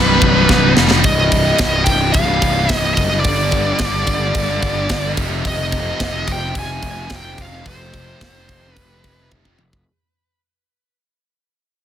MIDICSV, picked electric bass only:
0, 0, Header, 1, 2, 480
1, 0, Start_track
1, 0, Tempo, 551978
1, 908, Time_signature, 4, 2, 24, 8
1, 10303, End_track
2, 0, Start_track
2, 0, Title_t, "Picked electric bass"
2, 0, Program_c, 0, 34
2, 0, Note_on_c, 0, 24, 99
2, 175, Note_off_c, 0, 24, 0
2, 188, Note_on_c, 0, 24, 93
2, 415, Note_off_c, 0, 24, 0
2, 429, Note_on_c, 0, 24, 87
2, 656, Note_off_c, 0, 24, 0
2, 674, Note_on_c, 0, 29, 87
2, 898, Note_off_c, 0, 29, 0
2, 908, Note_on_c, 0, 24, 89
2, 1311, Note_off_c, 0, 24, 0
2, 1387, Note_on_c, 0, 24, 85
2, 1588, Note_off_c, 0, 24, 0
2, 1628, Note_on_c, 0, 24, 77
2, 1829, Note_off_c, 0, 24, 0
2, 1867, Note_on_c, 0, 24, 85
2, 2068, Note_off_c, 0, 24, 0
2, 2107, Note_on_c, 0, 24, 86
2, 2308, Note_off_c, 0, 24, 0
2, 2348, Note_on_c, 0, 24, 82
2, 2548, Note_off_c, 0, 24, 0
2, 2587, Note_on_c, 0, 30, 87
2, 2824, Note_off_c, 0, 30, 0
2, 2824, Note_on_c, 0, 31, 96
2, 3227, Note_off_c, 0, 31, 0
2, 3304, Note_on_c, 0, 31, 84
2, 3506, Note_off_c, 0, 31, 0
2, 3546, Note_on_c, 0, 31, 81
2, 3746, Note_off_c, 0, 31, 0
2, 3782, Note_on_c, 0, 31, 87
2, 3984, Note_off_c, 0, 31, 0
2, 4026, Note_on_c, 0, 31, 90
2, 4227, Note_off_c, 0, 31, 0
2, 4262, Note_on_c, 0, 31, 81
2, 4464, Note_off_c, 0, 31, 0
2, 4501, Note_on_c, 0, 29, 86
2, 4703, Note_off_c, 0, 29, 0
2, 4742, Note_on_c, 0, 29, 92
2, 5146, Note_off_c, 0, 29, 0
2, 5220, Note_on_c, 0, 29, 80
2, 5423, Note_off_c, 0, 29, 0
2, 5461, Note_on_c, 0, 29, 81
2, 5664, Note_off_c, 0, 29, 0
2, 5698, Note_on_c, 0, 29, 84
2, 5902, Note_off_c, 0, 29, 0
2, 5939, Note_on_c, 0, 29, 81
2, 6142, Note_off_c, 0, 29, 0
2, 6178, Note_on_c, 0, 29, 81
2, 6382, Note_off_c, 0, 29, 0
2, 6420, Note_on_c, 0, 29, 86
2, 6623, Note_off_c, 0, 29, 0
2, 6662, Note_on_c, 0, 29, 89
2, 7067, Note_off_c, 0, 29, 0
2, 7146, Note_on_c, 0, 29, 88
2, 7347, Note_off_c, 0, 29, 0
2, 7386, Note_on_c, 0, 29, 78
2, 7587, Note_off_c, 0, 29, 0
2, 7625, Note_on_c, 0, 29, 89
2, 7827, Note_off_c, 0, 29, 0
2, 7864, Note_on_c, 0, 29, 78
2, 8066, Note_off_c, 0, 29, 0
2, 8102, Note_on_c, 0, 29, 71
2, 8305, Note_off_c, 0, 29, 0
2, 8345, Note_on_c, 0, 29, 81
2, 8547, Note_off_c, 0, 29, 0
2, 10303, End_track
0, 0, End_of_file